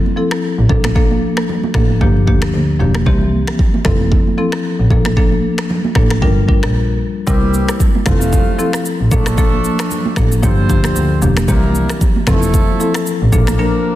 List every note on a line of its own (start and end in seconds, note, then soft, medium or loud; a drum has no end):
0.06 high conga medium
0.17 0.37 F3 medium
0.17 0.37 C4 medium
0.17 0.37 E4 medium
0.17 0.37 A4 medium
0.31 finger snap medium
0.31 cross-stick loud
0.58 0.67 A1 medium
0.69 1.09 A#1 loud
0.69 0.90 F3 medium
0.69 0.90 A#3 medium
0.69 0.90 D4 medium
0.69 0.90 A4 medium
0.69 kick medium
0.69 low conga medium
0.84 finger snap medium
0.84 cross-stick medium
0.84 high conga medium
0.95 1.45 F3 medium
0.95 1.45 A#3 medium
0.95 1.45 D4 medium
0.95 1.45 A4 loud
0.95 kick loud
1.11 high conga medium
1.37 finger snap medium
1.37 cross-stick medium
1.49 low conga medium
1.63 high conga medium
1.74 1.95 A1 loud
1.74 1.95 F3 medium
1.74 1.95 A#3 medium
1.74 1.95 D4 medium
1.74 1.95 A4 medium
1.74 finger snap medium
1.74 kick medium
1.74 cross-stick medium
1.90 high conga medium
2.01 2.21 G1 loud
2.01 2.25 F3 medium
2.01 2.26 A#3 medium
2.01 2.26 D4 medium
2.01 2.26 G4 loud
2.01 kick loud
2.01 low conga medium
2.17 high conga medium
2.27 2.47 D2 medium
2.27 2.47 F3 medium
2.27 2.48 A#3 medium
2.27 2.48 D4 medium
2.27 2.48 G4 medium
2.27 kick loud
2.42 finger snap medium
2.42 cross-stick loud
2.54 2.74 D2 medium
2.80 3.00 E1 medium
2.80 3.00 F3 medium
2.80 3.00 A#3 medium
2.80 3.00 D4 medium
2.80 3.00 G4 medium
2.80 low conga medium
2.95 finger snap medium
2.95 cross-stick medium
2.95 high conga medium
3.06 3.38 C2 loud
3.06 3.55 E3 loud
3.06 3.55 A#3 medium
3.06 3.55 C4 medium
3.06 3.56 G4 loud
3.06 kick loud
3.22 high conga medium
3.47 finger snap medium
3.47 cross-stick medium
3.59 kick loud
3.59 low conga medium
3.74 high conga medium
3.85 4.17 F1 loud
3.85 4.05 F3 medium
3.85 4.05 C4 medium
3.85 4.06 E4 medium
3.85 4.06 A4 medium
3.85 finger snap medium
3.85 kick medium
3.85 cross-stick medium
4.00 high conga medium
4.12 kick medium
4.12 low conga medium
4.27 high conga medium
4.38 4.58 F3 medium
4.38 4.58 C4 medium
4.38 4.58 E4 medium
4.38 4.58 A4 medium
4.52 finger snap medium
4.52 cross-stick loud
4.79 4.88 A1 medium
4.90 5.30 A#1 loud
4.90 5.11 F3 medium
4.90 5.11 A#3 medium
4.90 5.11 D4 medium
4.90 5.11 A4 medium
4.90 kick medium
4.90 low conga medium
5.05 finger snap medium
5.05 cross-stick loud
5.05 high conga medium
5.17 5.66 F3 medium
5.17 5.66 A#3 medium
5.17 5.66 D4 medium
5.17 5.66 A4 loud
5.17 kick loud
5.32 high conga medium
5.58 finger snap medium
5.58 cross-stick medium
5.70 low conga medium
5.85 high conga medium
5.95 6.16 A1 medium
5.95 6.16 F3 medium
5.95 6.16 A#3 medium
5.95 6.16 D4 medium
5.95 6.16 A4 medium
5.95 finger snap medium
5.95 kick medium
5.95 cross-stick medium
6.10 finger snap medium
6.10 cross-stick medium
6.10 high conga medium
6.22 6.42 G1 medium
6.22 6.46 G3 medium
6.22 6.47 D4 medium
6.22 6.47 F4 medium
6.22 6.47 A#4 loud
6.22 kick medium
6.22 low conga medium
6.38 high conga medium
6.48 6.68 G3 medium
6.48 6.69 D4 medium
6.48 6.69 F4 medium
6.48 6.69 A#4 medium
6.48 kick loud
6.63 6.72 A#1 medium
6.63 finger snap medium
6.63 cross-stick loud
7.27 7.59 C2 loud
7.27 7.79 E3 medium
7.27 7.76 G3 medium
7.27 7.79 G3 medium
7.27 7.76 C4 medium
7.27 7.79 C4 medium
7.27 7.76 E4 medium
7.27 7.79 G4 medium
7.27 7.77 A#4 loud
7.27 kick loud
7.27 shaker medium
7.43 high conga medium
7.54 shaker medium
7.69 finger snap medium
7.69 cross-stick medium
7.69 shaker medium
7.80 kick loud
7.80 low conga medium
7.80 shaker medium
7.95 high conga medium
8.06 8.38 F1 loud
8.06 8.84 C3 medium
8.06 8.26 F3 medium
8.06 8.84 F3 medium
8.06 8.84 A3 medium
8.06 8.27 C4 medium
8.06 8.27 E4 medium
8.06 8.84 F4 medium
8.06 8.27 A4 medium
8.06 finger snap medium
8.06 kick loud
8.06 cross-stick medium
8.06 shaker medium
8.21 high conga medium
8.21 shaker medium
8.33 kick medium
8.33 low conga medium
8.33 shaker medium
8.48 high conga medium
8.59 8.79 F3 medium
8.59 8.79 C4 medium
8.59 8.79 E4 medium
8.59 8.79 A4 medium
8.59 shaker medium
8.73 finger snap medium
8.73 cross-stick loud
8.73 shaker medium
8.86 shaker medium
9.01 9.09 A1 medium
9.11 9.51 A#1 loud
9.11 9.32 F3 medium
9.11 10.15 F3 medium
9.11 10.15 A3 medium
9.11 9.32 A#3 medium
9.11 9.32 D4 medium
9.11 10.15 D4 medium
9.11 10.15 A4 medium
9.11 9.32 A4 medium
9.11 kick medium
9.11 low conga medium
9.11 shaker medium
9.26 finger snap medium
9.26 cross-stick medium
9.26 high conga medium
9.26 shaker medium
9.38 9.87 F3 medium
9.38 9.87 A#3 medium
9.38 9.87 D4 medium
9.38 9.87 A4 loud
9.38 kick loud
9.38 shaker medium
9.53 high conga medium
9.64 shaker medium
9.79 finger snap medium
9.79 cross-stick medium
9.79 shaker medium
9.91 low conga medium
9.91 shaker medium
10.06 high conga medium
10.16 10.37 A1 loud
10.16 10.37 F3 medium
10.16 10.37 A#3 medium
10.16 10.37 D4 medium
10.16 10.37 A4 medium
10.16 finger snap medium
10.16 kick loud
10.16 cross-stick medium
10.16 shaker medium
10.32 high conga medium
10.32 shaker medium
10.43 10.63 G1 loud
10.43 10.68 F3 medium
10.43 11.21 G3 medium
10.43 10.68 A#3 medium
10.43 11.21 C4 medium
10.43 10.68 D4 medium
10.43 11.21 F4 medium
10.43 10.68 G4 loud
10.43 11.21 C5 medium
10.43 kick medium
10.43 low conga medium
10.43 shaker medium
10.59 high conga medium
10.69 10.89 D2 medium
10.69 10.90 F3 medium
10.69 10.90 A#3 medium
10.69 10.90 D4 medium
10.69 10.90 G4 medium
10.69 kick loud
10.69 shaker soft
10.84 finger snap medium
10.84 cross-stick loud
10.84 shaker medium
10.96 11.16 D2 medium
10.96 shaker medium
11.22 11.42 E1 medium
11.22 11.42 F3 medium
11.22 11.42 A#3 medium
11.22 11.42 D4 medium
11.22 11.43 G4 medium
11.22 low conga medium
11.22 shaker medium
11.37 finger snap medium
11.37 cross-stick medium
11.37 high conga medium
11.37 shaker medium
11.48 11.80 C2 loud
11.48 11.97 E3 loud
11.48 12.00 G3 medium
11.48 11.97 A#3 medium
11.48 12.00 A#3 medium
11.48 11.98 C4 medium
11.48 12.00 E4 medium
11.48 11.98 G4 loud
11.48 12.00 A#4 medium
11.48 kick loud
11.48 shaker medium
11.64 high conga medium
11.75 shaker medium
11.90 finger snap medium
11.90 cross-stick medium
11.90 shaker medium
12.01 kick loud
12.01 low conga medium
12.01 shaker medium
12.16 high conga medium
12.27 12.59 F1 loud
12.27 12.48 F3 medium
12.27 13.05 F3 medium
12.27 13.05 A3 medium
12.27 12.48 C4 medium
12.27 12.48 E4 medium
12.27 13.05 E4 medium
12.27 13.05 A4 medium
12.27 12.48 A4 medium
12.27 finger snap medium
12.27 kick medium
12.27 cross-stick medium
12.27 shaker medium
12.42 high conga medium
12.42 shaker medium
12.54 kick medium
12.54 low conga medium
12.54 shaker medium
12.69 high conga medium
12.80 13.00 F3 medium
12.80 13.00 C4 medium
12.80 13.00 E4 medium
12.80 13.00 A4 medium
12.80 shaker medium
12.94 finger snap medium
12.94 cross-stick loud
12.94 shaker medium
13.07 shaker medium
13.22 13.30 A1 loud
13.32 13.53 A#1 loud
13.32 13.53 F3 medium
13.32 13.95 F3 medium
13.32 13.53 A#3 medium
13.32 13.95 A#3 medium
13.32 13.95 D4 medium
13.32 13.53 D4 medium
13.32 13.53 A4 medium
13.32 13.95 A#4 medium
13.32 kick medium
13.32 low conga medium
13.32 shaker medium
13.47 finger snap medium
13.47 cross-stick medium
13.47 high conga medium
13.47 shaker medium
13.59 13.95 F3 medium
13.59 13.95 A#3 medium
13.59 13.95 D4 medium
13.59 13.95 A#4 loud